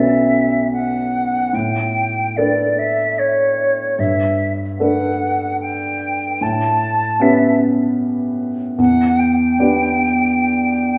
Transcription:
Already playing: B1 A3 C#4 F#4 B4 E5
0.72 F#5
1.53 A2 G5
2.37 A3 D4 A4 B4 D5
2.78 E5
3.18 C#5
3.99 G2 E5
4.78 A3 D4 A4 B4 F#5
5.61 G5
6.41 A2 A5
7.20 B3 C#4 G4 B4 E5
8.78 E2 F#5
9.19 G5
9.59 B3 D4 G4 B4

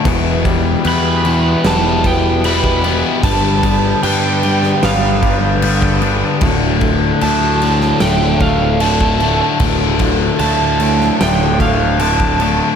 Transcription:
0.05 E1 E2 B2 E3 B3 G4 B4, kick, crash
0.44 G3, kick, crash
0.84 E2 B2 E3 B3, crash
0.88 B5
1.24 E2 B2 E3, crash
1.64 E1 E2 B2 E3 G3 A5, snare, crash
2.04 B3 G5, kick, crash
2.44 E2 B2 E3 G3 B5, crash
2.64 kick
2.84 E2 B2 E3 B3, crash
3.20 G1 G2 D3 B3 A5, kick, crash
3.24 G2 D3 G3
3.63 B3, kick, crash
4.03 G2 D3 G3 D4 G5, crash
4.43 G2 D3 G3, crash
4.63 snare
4.83 G1 G2 D3 G3 B3 F5, snare, crash
5.22 D4, kick, crash
5.62 G2 D3 G3 B3, crash
5.82 kick
6.01 G2 D3 G3 D4, crash
6.41 D1 D2 A2 D3 A3 F4 A4, kick, crash
6.81 D3, kick, crash
7.21 D2 A2 D3 A3 A5, crash
7.62 D2 A2 D3, crash
7.81 snare
8.00 D1 D2 A2 D3 G5, snare, crash
8.40 A3 F5, kick, crash
8.80 D2 A2 D3 A5, crash
9.01 kick
9.20 D2 A2 D3 A3, crash
9.60 D1 D2 A2 D3, kick, crash
9.99 D3, kick, crash
10.39 D2 A2 D3 A3 A5, crash
10.80 D2 A2 D3, crash
11.01 snare
11.19 D1 D2 A2 D3 G5, snare, crash
11.60 A3 F5, kick, crash
11.99 D2 A2 D3 A5, crash
12.20 kick
12.40 D2 A2 D3 A3, crash

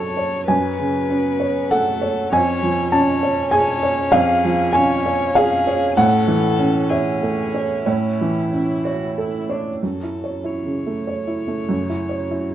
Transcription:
Already playing: F#2 C#3 F#3 C#4 A4 C#5 A5
0.17 C#5
0.48 F#2 B4 G#5
0.79 C#3
1.09 B3 C#4
1.40 C#5
1.70 A3 A4 F#5
2.02 C#5
2.31 F2 C#4 C#5 G#5
2.63 F3
2.92 C#4 C#5 A5
3.23 C#5
3.51 G#4 C#5 G#5
3.83 C#5
4.12 F2 G#4 F5
4.44 F3
4.73 C#4 C#5 G#5
5.06 C#5
5.35 G#4 F5
5.67 C#5
5.96 A2 C#4 A4 F#5
6.28 E3
6.59 C#4
6.90 G#4 C#5 E5
7.23 A3
7.55 C#5
7.86 A2 E4 C#5
8.21 E3
8.52 C#4 E4
8.84 F#4 C#5
9.17 E4 A4
9.49 D4 C#5
9.82 F#2 F#3 A4
10.03 E4
10.24 C#5
10.44 E3 E4 C#5
10.65 C#3
10.87 A3
11.06 C#3 C#5
11.27 E4
11.48 A3
11.69 F#2
11.90 E4
12.09 C#5
12.29 F#3 E4
12.50 C#3

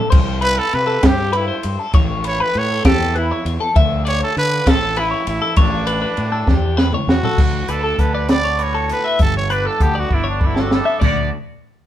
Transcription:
0.10 C2 C5, kick, ride, crash
0.41 B4, ride
0.56 A4 B4
0.73 C3 B4, ride
0.87 A4
1.03 G2 G4, kick, snare, ride
1.33 E4 B4, ride
1.48 C5
1.63 G2, ride
1.79 A4
1.93 A1 C#5, kick, ride
2.24 B4 C#5, ride
2.40 B4
2.54 A2 C#5, ride
2.71 A4
2.85 E2 G4 A4, kick, snare, ride
3.15 E4 B4, ride
3.31 C#5
3.45 E2, ride
3.60 A4
3.76 D2 E5, kick, ride
4.05 C#5 D5, ride
4.21 A4 C#5
4.37 D3 B4, ride
4.51 B4
4.66 A1 A4, kick, snare, ride
4.96 E4 B4, ride
5.11 C#5
5.27 A1 E4, ride
5.42 A4
5.56 A1 D4 C#5, kick, ride
5.87 B4, ride
6.02 B4
6.17 A2, ride
6.32 A4
6.47 E2 G4, kick, snare
6.77 B4, snare
6.93 C#5, mid tom
7.07 E2 F#4, snare
7.23 A4, floor tom
7.38 D2, kick, crash
7.68 D2 D4 A4 B4, closed hi-hat
7.84 A4
7.98 D2 D3 B3 B4, kick, closed hi-hat
8.15 D5
8.29 D4 B4 D5, snare, closed hi-hat
8.44 C#5
8.59 A2 F#4 B4, closed hi-hat
8.63 C#5
8.74 A4
8.89 B3 B4, closed hi-hat
9.04 E5
9.19 G1 G2 A4, kick, closed hi-hat
9.37 C#5
9.50 D4 B4, closed hi-hat
9.65 A4
9.80 D2 D3 B3 G4, kick, closed hi-hat
9.95 D5
9.99 F#4
10.10 G1 D4 B4, kick
10.14 E4
10.24 C#5
10.30 D4
10.40 D3 B4, kick
10.44 D4 E4
10.55 A4, snare
10.60 F#4
10.71 B3 A4, snare
10.85 E5
11.00 D2 D3 B3 D5, kick, floor tom, splash
11.05 D4 F#4

